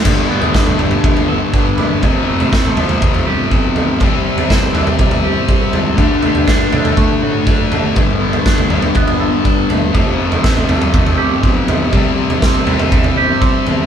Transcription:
<<
  \new Staff \with { instrumentName = "Clean electric guitar" } { \time 4/4 \key g \major \tempo 4 = 121 g8 b8 d'8 g8 b8 a'8 d'8 g8 | f8 a8 c'8 f8 a8 g'8 c'8 f8 | c8 g8 c'8 e8 g8 g'8 c'8 e8 | d8 a8 d'8 d8 a8 fis'8 d'8 d8 |
g8 b8 d'8 g8 b8 a'8 d'8 g8 | f8 a8 c'8 f8 a8 g'8 c'8 f8 | c8 g8 c'8 e8 g8 g'8 c'8 e8 | }
  \new Staff \with { instrumentName = "Distorted electric guitar" } { \clef bass \time 4/4 \key g \major <g, d g>4. <g, d g>2~ <g, d g>8 | <f, c f>4. <f, c f>2~ <f, c f>8 | <c g c'>4. <c g c'>2~ <c g c'>8 | <d a d'>4. <d a d'>2~ <d a d'>8 |
<g, d g>4. <g, d g>2~ <g, d g>8 | <f, c f>4. <f, c f>2~ <f, c f>8 | <c g c'>4. <c g c'>2~ <c g c'>8 | }
  \new Staff \with { instrumentName = "Picked electric bass" } { \clef bass \time 4/4 \key g \major g,,4 g,,8 g,,8 g,,4 g,,8 fis,,8 | f,,8 f,,8 a,,8 c,8 f,,8 c,8 b,,4 | c,4 c,8 c,8 c,4 c,8 cis,8 | d,8 d,8 g,8 a,8 d,8 a,8 fis,,4 |
g,,4 g,,8 g,,8 g,,4 g,,8 e,,8 | f,,8 f,,8 a,,8 c,8 f,,8 c,8 b,,4 | c,4 c,8 c,8 c,4 c,8 e,8 | }
  \new DrumStaff \with { instrumentName = "Drums" } \drummode { \time 4/4 <cymc bd tomfh>8. tomfh16 <bd sn>16 tomfh16 tomfh16 tomfh16 <bd tomfh>16 tomfh8. bd8 tomfh8 | <bd tomfh>8. tomfh16 <bd sn>16 tomfh16 tomfh16 tomfh16 <bd tomfh>16 tomfh8. bd8 tomfh8 | <bd tomfh>8. tomfh16 <bd sn>16 tomfh16 tomfh16 tomfh16 <bd tomfh>16 tomfh8. bd8 tomfh8 | <bd tomfh>8 tomfh16 tomfh16 <bd sn>8 <tomfh toml>16 tomfh16 <bd tomfh>4 bd8 tomfh8 |
<bd tomfh>8. tomfh16 <bd sn>16 tomfh16 tomfh16 tomfh16 <bd tomfh>16 tomfh8. bd8 tomfh8 | <bd tomfh>8. tomfh16 <bd sn>16 tomfh16 tomfh16 tomfh16 <bd tomfh>16 tomfh8. bd8 tomfh8 | <bd tomfh>8. tomfh16 <bd sn>16 tomfh16 tomfh16 tomfh16 <bd tomfh>16 tomfh8. bd8 tomfh8 | }
>>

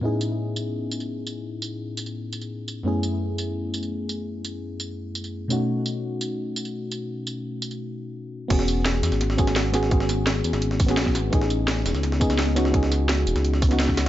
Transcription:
<<
  \new Staff \with { instrumentName = "FM electric piano" } { \time 4/4 \key e \major \tempo 4 = 170 <a, b cis' dis' e' gis'>1~ | <a, b cis' dis' e' gis'>1 | <fis, a b cis' e' gis'>1~ | <fis, a b cis' e' gis'>2.~ <fis, a b cis' e' gis'>8 <b, a cis' dis' fis'>8~ |
<b, a cis' dis' fis'>1~ | <b, a cis' dis' fis'>2.~ <b, a cis' dis' fis'>8 r8 | <b cis' fis' gis'>2~ <b cis' fis' gis'>8 <b cis' fis' gis'>4 <b cis' fis' gis'>8 | <b cis' fis' gis'>2~ <b cis' fis' gis'>8. <b cis' fis' gis'>4~ <b cis' fis' gis'>16 |
<b cis' dis' gis'>2~ <b cis' dis' gis'>8 <b cis' dis' gis'>4 <b cis' dis' fis'>8 | <b cis' dis' gis'>2~ <b cis' dis' gis'>8. <b cis' dis' fis'>4~ <b cis' dis' fis'>16 | }
  \new Staff \with { instrumentName = "Analog synth bass" } { \clef bass \time 4/4 \key e \major r1 | r1 | r1 | r1 |
r1 | r1 | e,,4. e,16 gis,,2~ gis,,16~ | gis,,4. e,16 gis,,4~ gis,,16 b,,8 gis,,8 |
a,,4. e,,16 cis,2~ cis,16~ | cis,4. e,,16 cis,4~ cis,16 cis,4 | }
  \new DrumStaff \with { instrumentName = "Drums" } \drummode { \time 4/4 r8 tamb8 r8 tamb8 r8 tamb16 tamb16 r8 tamb8 | r8 tamb8 r8 tamb16 tamb16 r8 tamb16 tamb16 r8 tamb8 | r8 tamb8 r8 tamb8 r8 tamb16 tamb16 r8 tamb8 | r8 tamb8 r8 tamb8 r8 tamb16 tamb16 r8 tamb8 |
r8 tamb8 r8 tamb8 r8 tamb16 tamb16 r8 tamb8 | r8 tamb8 r8 tamb16 tamb16 r4 r4 | <cymc hh bd>16 sn16 <hh tamb>8 <hh sn>16 sn16 <hh sn tamb>16 <hh sn tamb>16 <hh sn>16 sn16 <hh bd tamb>16 <hh sn tamb>16 <hh sn>8 <hh sn tamb>16 sn16 | <hh bd>16 sn16 <hh sn tamb>8 <hh sn>16 hh16 <hh tamb>16 <hh sn tamb>16 hh16 sn16 <hh hho bd tamb>16 <hh sn tamb>16 <hh sn>16 <bd sn>16 <hh sn tamb>8 |
<hh bd>16 sn16 <hh tamb>8 <hh sn>16 sn16 <hh sn tamb>16 <hh sn tamb>16 <hh sn>16 sn16 <hh bd tamb>16 <hh sn tamb>16 <hh sn>8 <hh sn tamb>16 sn16 | <hh bd>16 sn16 <hh sn tamb>8 <hh sn>16 hh16 <hh tamb>16 <hh sn tamb>16 hh16 sn16 <hh hho bd tamb>16 <hh sn tamb>16 <hh sn>16 <bd sn>16 <hh sn tamb>8 | }
>>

